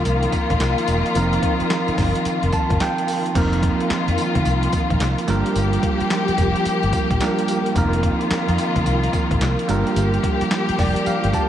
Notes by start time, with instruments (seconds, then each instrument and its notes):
Already playing: string section D#3 A#3 F4, tine electric piano F3 C4 D#4 A#4
0.05 fingered electric bass C2, closed hi-hat, tambourine
0.23 closed hi-hat
0.32 kick, closed hi-hat, tambourine
0.50 fingered electric bass A#1, kick, closed hi-hat
0.60 fingered electric bass C2, snare, clap, closed hi-hat, tambourine
0.78 closed hi-hat
0.88 fingered electric bass E1, closed hi-hat, tambourine
1.06 closed hi-hat
1.15 fingered electric bass F1, tine electric piano F3 C4 D#4 A#4, closed hi-hat, tambourine
1.33 closed hi-hat
1.43 kick, closed hi-hat
1.60 muted fingered electric bass stroke, closed hi-hat
1.70 snare, clap, closed hi-hat, tambourine
1.88 muted fingered electric bass stroke, closed hi-hat
1.98 fingered electric bass G1, kick, snare, open hi-hat, tambourine
2.15 closed hi-hat
2.25 muted fingered electric bass stroke, closed hi-hat, tambourine
2.43 fingered electric bass F1, closed hi-hat
2.52 tine electric piano A5, kick, closed hi-hat, tambourine
2.70 fingered electric bass G1, kick, closed hi-hat
2.80 tine electric piano G5, snare, clap, closed hi-hat, tambourine
2.98 closed hi-hat
3.08 open hi-hat, tambourine
3.26 closed hi-hat
3.35 fingered electric bass F1, string section D#3 A#3 F4, tine electric piano F3 A#3 C4 D#4 A#4, kick, closed hi-hat, crash, tambourine
3.53 closed hi-hat
3.63 kick, closed hi-hat
3.80 closed hi-hat
3.90 muted fingered electric bass stroke, snare, clap, closed hi-hat, tambourine
4.08 fingered electric bass F2, closed hi-hat
4.18 closed hi-hat, tambourine
4.35 fingered electric bass D2, kick, closed hi-hat
4.45 fingered electric bass C2, closed hi-hat, tambourine
4.63 closed hi-hat
4.73 kick, closed hi-hat, tambourine
4.90 fingered electric bass A#1, kick, closed hi-hat
5.00 fingered electric bass C2, snare, clap, closed hi-hat, tambourine
5.18 closed hi-hat
5.28 fingered electric bass G1, string section F3 G4, tine electric piano G3 A#3 D4 F4 A#4, closed hi-hat, tambourine
5.46 closed hi-hat
5.55 fingered electric bass G1, closed hi-hat, tambourine
5.73 closed hi-hat
5.83 kick, closed hi-hat
6.00 muted fingered electric bass stroke, closed hi-hat
6.10 snare, clap, closed hi-hat, tambourine
6.28 muted fingered electric bass stroke, closed hi-hat
6.38 fingered electric bass F1, kick, closed hi-hat, tambourine
6.56 closed hi-hat
6.65 muted fingered electric bass stroke, closed hi-hat, tambourine
6.83 fingered electric bass G1, closed hi-hat
6.93 kick, closed hi-hat, tambourine
7.11 fingered electric bass A#1, kick, closed hi-hat
7.20 tine electric piano G3 A#3 D4 F4 A#4, snare, clap, closed hi-hat, tambourine
7.39 closed hi-hat
7.48 closed hi-hat, tambourine
7.66 closed hi-hat
7.75 fingered electric bass F1, string section D#3 F4, tine electric piano F3 A#3 C4 D#4 A#4, kick, closed hi-hat, tambourine
7.93 closed hi-hat
8.03 kick, closed hi-hat
8.21 closed hi-hat
8.31 muted fingered electric bass stroke, snare, clap, closed hi-hat, tambourine
8.49 fingered electric bass F2, closed hi-hat
8.58 closed hi-hat, tambourine
8.76 fingered electric bass D2, kick, closed hi-hat
8.86 fingered electric bass C2, closed hi-hat, tambourine
9.04 closed hi-hat
9.13 kick, closed hi-hat, tambourine
9.31 fingered electric bass A#1, kick, closed hi-hat
9.41 fingered electric bass C2, snare, clap, closed hi-hat, tambourine
9.59 closed hi-hat
9.68 fingered electric bass G1, string section F3 G4, tine electric piano G3 A#3 D4 F4 A#4, closed hi-hat, tambourine
9.87 closed hi-hat
9.96 fingered electric bass G1, closed hi-hat, tambourine
10.14 closed hi-hat
10.23 kick, closed hi-hat
10.41 muted fingered electric bass stroke, closed hi-hat
10.51 snare, clap, closed hi-hat, tambourine
10.69 muted fingered electric bass stroke, closed hi-hat
10.79 fingered electric bass F1, tine electric piano D5, kick, snare, open hi-hat, tambourine
10.96 closed hi-hat
11.06 tine electric piano F5, muted fingered electric bass stroke, closed hi-hat, tambourine
11.24 fingered electric bass G1, closed hi-hat
11.33 tine electric piano A5, kick, closed hi-hat, tambourine